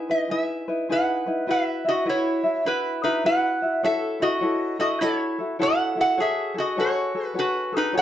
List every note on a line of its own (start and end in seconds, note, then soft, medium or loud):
0.00 0.10 D#4 medium
0.00 0.10 G#4 medium
0.00 0.10 E5 medium
0.09 0.29 D#4 soft
0.09 0.30 E4 soft
0.09 0.30 B4 soft
0.09 0.31 D#5 medium
0.29 0.68 D#4 soft
0.29 0.68 E4 medium
0.29 0.68 G#4 soft
0.29 0.67 B4 medium
0.29 1.24 E5 medium
0.68 0.89 D#4 soft
0.68 0.89 E4 soft
0.68 0.90 B4 soft
0.89 1.27 D#4 medium
0.89 1.26 E4 medium
0.89 1.27 G#4 medium
0.89 1.25 B4 medium
0.89 1.46 B4 medium
0.89 1.46 F#5 medium
1.26 1.47 D#4 soft
1.26 1.47 E4 soft
1.26 1.46 B4 medium
1.47 1.85 E4 medium
1.47 1.85 F#4 medium
1.47 1.85 B4 medium
1.47 1.83 E5 medium
1.47 1.88 E5 medium
1.85 2.05 E4 soft
1.85 2.05 F#4 soft
1.85 2.09 D#5 medium
1.85 2.05 E5 soft
1.89 2.07 F#4 medium
2.05 2.43 E4 medium
2.05 2.44 F#4 medium
2.05 2.44 B4 medium
2.05 2.42 E5 medium
2.09 2.63 E4 medium
2.09 2.69 C#5 medium
2.43 2.66 E4 soft
2.43 2.65 F#4 soft
2.43 2.65 E5 medium
2.65 3.01 E4 medium
2.65 3.04 E4 medium
2.65 3.04 F#4 medium
2.65 3.03 B4 medium
2.65 3.02 E5 medium
3.03 3.23 D#4 medium
3.03 3.24 E4 soft
3.03 3.24 F#4 soft
3.03 3.25 B4 medium
3.03 3.24 E5 soft
3.24 3.62 E4 medium
3.24 3.62 F#4 medium
3.24 3.62 B4 medium
3.24 3.80 B4 medium
3.24 3.61 E5 medium
3.24 3.86 F#5 medium
3.62 3.83 E4 soft
3.62 3.83 F#4 soft
3.62 3.83 E5 soft
3.83 4.20 E4 medium
3.83 4.21 F#4 medium
3.83 4.19 A4 medium
3.83 4.21 C#5 medium
3.83 4.22 E5 medium
4.20 4.41 E4 soft
4.20 4.40 F#4 soft
4.20 4.76 F#4 medium
4.20 4.42 A4 soft
4.20 4.80 D#5 medium
4.41 4.78 E4 medium
4.41 4.79 F#4 medium
4.41 4.78 A4 medium
4.41 4.79 C#5 medium
4.79 5.01 E4 soft
4.79 4.99 F#4 medium
4.79 5.00 F#4 soft
4.79 5.00 A4 medium
4.79 5.02 D#5 medium
5.01 5.55 E4 medium
5.01 5.39 E4 medium
5.01 5.39 F#4 medium
5.01 5.37 A4 medium
5.01 5.39 C#5 medium
5.01 5.62 C#5 medium
5.39 5.58 E4 soft
5.39 5.58 F#4 soft
5.39 5.59 A4 soft
5.59 5.96 E4 medium
5.59 5.96 F#4 medium
5.59 5.94 A4 medium
5.59 5.95 A4 medium
5.59 5.97 C#5 medium
5.59 6.00 F#5 loud
5.95 6.18 E4 soft
5.95 6.17 F#4 soft
5.95 6.17 A4 soft
6.01 6.19 A4 medium
6.01 6.20 F#5 medium
6.17 6.55 F#4 medium
6.17 6.54 G#4 medium
6.17 6.53 A4 medium
6.17 6.55 C#5 medium
6.22 6.55 E5 medium
6.54 6.77 F#4 soft
6.54 6.77 F#4 medium
6.54 6.77 G#4 soft
6.54 6.76 A4 soft
6.60 6.79 D#5 medium
6.77 7.15 F#4 medium
6.77 7.33 F#4 medium
6.77 7.14 G#4 medium
6.77 7.13 A4 medium
6.77 7.14 C#5 medium
6.77 7.26 C#5 medium
7.15 7.34 F#4 soft
7.15 7.34 G#4 soft
7.15 7.35 A4 soft
7.26 7.39 B4 medium
7.34 7.73 F#4 medium
7.34 7.73 G#4 medium
7.34 7.71 A4 medium
7.34 7.72 C#5 soft
7.39 7.72 F#4 medium
7.39 7.76 B4 medium
7.72 7.93 F#4 soft
7.72 7.93 G#4 soft
7.72 7.93 A4 medium
7.77 7.95 D#4 medium
7.77 7.97 B4 medium
7.93 8.02 F#4 medium
7.93 8.02 G#4 medium
7.93 8.02 A4 medium
7.93 8.02 C#5 medium
7.97 8.02 C#5 medium
7.97 8.02 G#5 medium